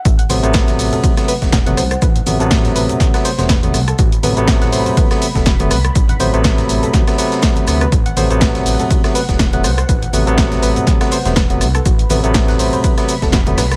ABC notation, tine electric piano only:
X:1
M:4/4
L:1/16
Q:"Swing 16ths" 1/4=122
K:Ador
V:1 name="Tine electric piano" clef=bass
z2 [C,F,A,B,] [C,F,A,B,]6 [C,F,A,B,] z [C,F,A,B,] z [C,F,A,B,] z2 | z2 [C,F,A,B,] [C,F,A,B,]6 [C,F,A,B,] z [C,F,A,B,] z [C,F,A,B,] z2 | z2 [C,F,A,B,] [C,F,A,B,]6 [C,F,A,B,] z [C,F,A,B,] z [C,F,A,B,] z2 | z2 [C,F,A,B,] [C,F,A,B,]6 [C,F,A,B,] [C,F,A,B,]4 [C,F,A,B,] z |
z2 [C,F,A,B,] [C,F,A,B,]6 [C,F,A,B,] z [C,F,A,B,] z [C,F,A,B,] z2 | z2 [C,F,A,B,] [C,F,A,B,]6 [C,F,A,B,] z [C,F,A,B,] z [C,F,A,B,] z2 | z2 [C,F,A,B,] [C,F,A,B,]6 [C,F,A,B,] z [C,F,A,B,] z [C,F,A,B,] z2 |]